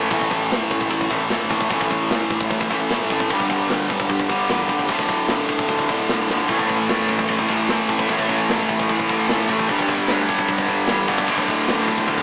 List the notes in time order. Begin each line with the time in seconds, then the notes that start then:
Already playing: A2 E3 A3
0.11 A1 A2 E3 A3, kick, crash
0.21 kick
0.31 A1, kick, ride
0.51 E1, snare, ride
0.71 A1, kick, ride
0.81 kick
0.90 A1, kick, ride
1.01 kick
1.10 A1 A2 E3 A3, kick, ride
1.29 G1 A2 E3 A3, snare, ride
1.49 A1 A2 E3 A3, kick, ride
1.61 kick
1.70 A1 A2 E3 A3, kick, ride
1.81 kick
1.90 A1, kick, ride
2.11 E1, snare, ride
2.30 A1, kick, ride
2.41 kick
2.50 A1, kick, ride
2.61 kick
2.70 A1 A2 E3 A3, kick, ride
2.89 G1 A2 E3 A3, snare, ride
3.10 A1 A2 E3 A3, kick, ride
3.20 kick
3.29 G1 G2 D3 G3, kick, ride
3.40 kick
3.50 G1, kick, ride
3.69 D2, snare, ride
3.90 G1, kick, ride
4.00 kick
4.09 G2, kick, ride
4.20 kick
4.29 G1 G2 D3 G3, kick, ride
4.49 E2 G2 D3 G3, snare, ride
4.69 C#1 G2 D3 G3, kick, ride
4.79 kick
4.88 D1 D2 A2 D3, kick, ride
4.99 kick
5.09 D1, kick, ride
5.28 A1, snare, ride
5.48 D1, kick, ride
5.59 kick
5.68 D2, kick, ride
5.79 kick
5.88 D1 A2 D3, kick, ride
5.93 D2
6.09 B1 D2 A2 D3, snare, ride
6.29 G1 D2 A2 D3, snare
6.48 A1 A2 E3 A3, kick, crash, splash
6.59 kick
6.69 A1, kick, ride
6.89 E1, snare, ride
7.08 A1, kick, ride
7.19 kick
7.28 A1, kick, ride
7.39 kick
7.48 A1 A3, kick, ride
7.52 A2 E3
7.69 G1 A2 E3, snare, ride
7.73 A3
7.89 A1 A2 E3 A3, kick, ride
7.99 kick
8.08 A1 A2 E3 A3, kick, ride
8.19 kick
8.29 A1, kick, ride
8.49 E1, snare, ride
8.69 A1, kick, ride
8.79 kick
8.89 A1, kick, ride
8.99 kick
9.08 A1 A2 E3 A3, kick, ride
9.28 G1 A2 E3 A3, snare, ride
9.48 A1 A2 E3 A3, kick, ride
9.59 kick
9.67 G1 G2 D3 G3, kick, ride
9.79 kick
9.89 G1, kick, ride
10.08 D2, snare, ride
10.28 G1, kick, ride
10.39 kick
10.48 G2, kick, ride
10.58 kick
10.68 G1 G2 D3 G3, kick, ride
10.87 E2 G2 D3 G3, snare, ride
11.08 G1 G2 D3 G3, kick, ride
11.18 kick
11.27 D1 D2 A2 D3, kick, ride
11.38 kick
11.48 D1, kick, ride
11.68 A1, snare, ride
11.88 D1, kick, ride
11.98 kick
12.07 D2, kick, ride
12.18 kick